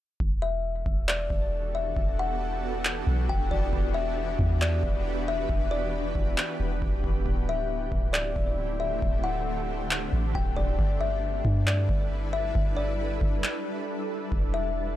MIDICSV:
0, 0, Header, 1, 5, 480
1, 0, Start_track
1, 0, Key_signature, 1, "minor"
1, 0, Tempo, 441176
1, 219, Time_signature, 4, 2, 24, 8
1, 16281, End_track
2, 0, Start_track
2, 0, Title_t, "Kalimba"
2, 0, Program_c, 0, 108
2, 459, Note_on_c, 0, 76, 68
2, 687, Note_off_c, 0, 76, 0
2, 1175, Note_on_c, 0, 74, 85
2, 1854, Note_off_c, 0, 74, 0
2, 1902, Note_on_c, 0, 76, 69
2, 2128, Note_off_c, 0, 76, 0
2, 2387, Note_on_c, 0, 78, 76
2, 2611, Note_off_c, 0, 78, 0
2, 3584, Note_on_c, 0, 79, 79
2, 3810, Note_off_c, 0, 79, 0
2, 3821, Note_on_c, 0, 74, 68
2, 4048, Note_off_c, 0, 74, 0
2, 4291, Note_on_c, 0, 76, 79
2, 4523, Note_off_c, 0, 76, 0
2, 5022, Note_on_c, 0, 74, 86
2, 5697, Note_off_c, 0, 74, 0
2, 5747, Note_on_c, 0, 76, 82
2, 5971, Note_off_c, 0, 76, 0
2, 6213, Note_on_c, 0, 74, 78
2, 6444, Note_off_c, 0, 74, 0
2, 8149, Note_on_c, 0, 76, 70
2, 8372, Note_off_c, 0, 76, 0
2, 8846, Note_on_c, 0, 74, 89
2, 9529, Note_off_c, 0, 74, 0
2, 9573, Note_on_c, 0, 76, 72
2, 9804, Note_off_c, 0, 76, 0
2, 10049, Note_on_c, 0, 78, 78
2, 10282, Note_off_c, 0, 78, 0
2, 11262, Note_on_c, 0, 79, 73
2, 11488, Note_off_c, 0, 79, 0
2, 11495, Note_on_c, 0, 74, 69
2, 11725, Note_off_c, 0, 74, 0
2, 11975, Note_on_c, 0, 76, 78
2, 12205, Note_off_c, 0, 76, 0
2, 12698, Note_on_c, 0, 74, 83
2, 13375, Note_off_c, 0, 74, 0
2, 13415, Note_on_c, 0, 76, 87
2, 13645, Note_off_c, 0, 76, 0
2, 13889, Note_on_c, 0, 74, 85
2, 14122, Note_off_c, 0, 74, 0
2, 15818, Note_on_c, 0, 76, 72
2, 16046, Note_off_c, 0, 76, 0
2, 16281, End_track
3, 0, Start_track
3, 0, Title_t, "Ambient pad"
3, 0, Program_c, 1, 92
3, 217, Note_on_c, 1, 59, 76
3, 218, Note_on_c, 1, 52, 82
3, 219, Note_on_c, 1, 67, 77
3, 220, Note_on_c, 1, 62, 76
3, 220, Note_on_c, 1, 66, 77
3, 220, Note_on_c, 1, 69, 91
3, 4021, Note_off_c, 1, 69, 0
3, 4059, Note_on_c, 1, 71, 90
3, 7855, Note_off_c, 1, 52, 0
3, 7855, Note_off_c, 1, 59, 0
3, 7856, Note_off_c, 1, 62, 0
3, 7856, Note_off_c, 1, 66, 0
3, 7861, Note_off_c, 1, 71, 0
3, 7896, Note_on_c, 1, 50, 84
3, 7896, Note_on_c, 1, 57, 74
3, 7896, Note_on_c, 1, 60, 75
3, 7896, Note_on_c, 1, 64, 77
3, 9798, Note_off_c, 1, 64, 0
3, 9819, Note_on_c, 1, 62, 77
3, 11696, Note_off_c, 1, 67, 0
3, 11699, Note_off_c, 1, 50, 0
3, 11699, Note_off_c, 1, 57, 0
3, 11699, Note_off_c, 1, 60, 0
3, 11735, Note_on_c, 1, 64, 74
3, 11735, Note_on_c, 1, 69, 77
3, 11735, Note_on_c, 1, 71, 89
3, 11736, Note_on_c, 1, 55, 80
3, 15539, Note_off_c, 1, 55, 0
3, 15539, Note_off_c, 1, 64, 0
3, 15539, Note_off_c, 1, 71, 0
3, 15579, Note_on_c, 1, 52, 81
3, 15579, Note_on_c, 1, 59, 73
3, 15579, Note_on_c, 1, 66, 74
3, 15580, Note_on_c, 1, 67, 76
3, 16281, Note_off_c, 1, 52, 0
3, 16281, Note_off_c, 1, 59, 0
3, 16281, Note_off_c, 1, 62, 0
3, 16281, Note_off_c, 1, 66, 0
3, 16281, Note_off_c, 1, 67, 0
3, 16281, Note_off_c, 1, 69, 0
3, 16281, End_track
4, 0, Start_track
4, 0, Title_t, "808-style bass"
4, 0, Program_c, 2, 38
4, 219, Note_on_c, 2, 28, 109
4, 910, Note_off_c, 2, 28, 0
4, 936, Note_on_c, 2, 28, 101
4, 1398, Note_off_c, 2, 28, 0
4, 1418, Note_on_c, 2, 28, 100
4, 2110, Note_off_c, 2, 28, 0
4, 2139, Note_on_c, 2, 28, 102
4, 3295, Note_off_c, 2, 28, 0
4, 3338, Note_on_c, 2, 35, 102
4, 3569, Note_off_c, 2, 35, 0
4, 3582, Note_on_c, 2, 28, 102
4, 3811, Note_off_c, 2, 28, 0
4, 3821, Note_on_c, 2, 28, 98
4, 4051, Note_off_c, 2, 28, 0
4, 4058, Note_on_c, 2, 28, 105
4, 4750, Note_off_c, 2, 28, 0
4, 4776, Note_on_c, 2, 40, 101
4, 5238, Note_off_c, 2, 40, 0
4, 5258, Note_on_c, 2, 28, 101
4, 5949, Note_off_c, 2, 28, 0
4, 5978, Note_on_c, 2, 28, 102
4, 6670, Note_off_c, 2, 28, 0
4, 6695, Note_on_c, 2, 28, 101
4, 6928, Note_off_c, 2, 28, 0
4, 7179, Note_on_c, 2, 28, 99
4, 7409, Note_off_c, 2, 28, 0
4, 7421, Note_on_c, 2, 28, 99
4, 7651, Note_off_c, 2, 28, 0
4, 7660, Note_on_c, 2, 28, 101
4, 7890, Note_off_c, 2, 28, 0
4, 7897, Note_on_c, 2, 26, 108
4, 8589, Note_off_c, 2, 26, 0
4, 8616, Note_on_c, 2, 26, 103
4, 9078, Note_off_c, 2, 26, 0
4, 9097, Note_on_c, 2, 26, 97
4, 9789, Note_off_c, 2, 26, 0
4, 9818, Note_on_c, 2, 26, 106
4, 10975, Note_off_c, 2, 26, 0
4, 11019, Note_on_c, 2, 33, 101
4, 11249, Note_off_c, 2, 33, 0
4, 11261, Note_on_c, 2, 26, 102
4, 11491, Note_off_c, 2, 26, 0
4, 11501, Note_on_c, 2, 26, 98
4, 11730, Note_off_c, 2, 26, 0
4, 11737, Note_on_c, 2, 31, 109
4, 12429, Note_off_c, 2, 31, 0
4, 12455, Note_on_c, 2, 43, 104
4, 12918, Note_off_c, 2, 43, 0
4, 12937, Note_on_c, 2, 31, 98
4, 13629, Note_off_c, 2, 31, 0
4, 13657, Note_on_c, 2, 31, 107
4, 14349, Note_off_c, 2, 31, 0
4, 14376, Note_on_c, 2, 31, 101
4, 14608, Note_off_c, 2, 31, 0
4, 15579, Note_on_c, 2, 28, 107
4, 16270, Note_off_c, 2, 28, 0
4, 16281, End_track
5, 0, Start_track
5, 0, Title_t, "Drums"
5, 219, Note_on_c, 9, 36, 104
5, 328, Note_off_c, 9, 36, 0
5, 937, Note_on_c, 9, 36, 93
5, 1045, Note_off_c, 9, 36, 0
5, 1183, Note_on_c, 9, 39, 107
5, 1292, Note_off_c, 9, 39, 0
5, 1418, Note_on_c, 9, 36, 90
5, 1527, Note_off_c, 9, 36, 0
5, 2138, Note_on_c, 9, 36, 107
5, 2247, Note_off_c, 9, 36, 0
5, 3102, Note_on_c, 9, 39, 103
5, 3211, Note_off_c, 9, 39, 0
5, 3582, Note_on_c, 9, 36, 90
5, 3691, Note_off_c, 9, 36, 0
5, 3821, Note_on_c, 9, 36, 93
5, 3930, Note_off_c, 9, 36, 0
5, 4058, Note_on_c, 9, 36, 109
5, 4167, Note_off_c, 9, 36, 0
5, 4776, Note_on_c, 9, 36, 93
5, 4885, Note_off_c, 9, 36, 0
5, 5024, Note_on_c, 9, 39, 103
5, 5133, Note_off_c, 9, 39, 0
5, 5258, Note_on_c, 9, 36, 89
5, 5366, Note_off_c, 9, 36, 0
5, 5978, Note_on_c, 9, 36, 107
5, 6087, Note_off_c, 9, 36, 0
5, 6695, Note_on_c, 9, 36, 89
5, 6804, Note_off_c, 9, 36, 0
5, 6941, Note_on_c, 9, 39, 99
5, 7050, Note_off_c, 9, 39, 0
5, 7421, Note_on_c, 9, 36, 92
5, 7530, Note_off_c, 9, 36, 0
5, 7660, Note_on_c, 9, 36, 90
5, 7769, Note_off_c, 9, 36, 0
5, 7897, Note_on_c, 9, 36, 100
5, 8006, Note_off_c, 9, 36, 0
5, 8615, Note_on_c, 9, 36, 90
5, 8724, Note_off_c, 9, 36, 0
5, 8862, Note_on_c, 9, 39, 108
5, 8971, Note_off_c, 9, 39, 0
5, 9097, Note_on_c, 9, 36, 92
5, 9206, Note_off_c, 9, 36, 0
5, 9818, Note_on_c, 9, 36, 104
5, 9927, Note_off_c, 9, 36, 0
5, 10784, Note_on_c, 9, 39, 104
5, 10892, Note_off_c, 9, 39, 0
5, 11262, Note_on_c, 9, 36, 89
5, 11370, Note_off_c, 9, 36, 0
5, 11501, Note_on_c, 9, 36, 89
5, 11609, Note_off_c, 9, 36, 0
5, 11738, Note_on_c, 9, 36, 107
5, 11847, Note_off_c, 9, 36, 0
5, 12455, Note_on_c, 9, 36, 93
5, 12564, Note_off_c, 9, 36, 0
5, 12701, Note_on_c, 9, 39, 107
5, 12810, Note_off_c, 9, 39, 0
5, 12937, Note_on_c, 9, 36, 94
5, 13046, Note_off_c, 9, 36, 0
5, 13658, Note_on_c, 9, 36, 101
5, 13766, Note_off_c, 9, 36, 0
5, 14375, Note_on_c, 9, 36, 91
5, 14484, Note_off_c, 9, 36, 0
5, 14622, Note_on_c, 9, 39, 106
5, 14731, Note_off_c, 9, 39, 0
5, 15579, Note_on_c, 9, 36, 106
5, 15688, Note_off_c, 9, 36, 0
5, 16281, End_track
0, 0, End_of_file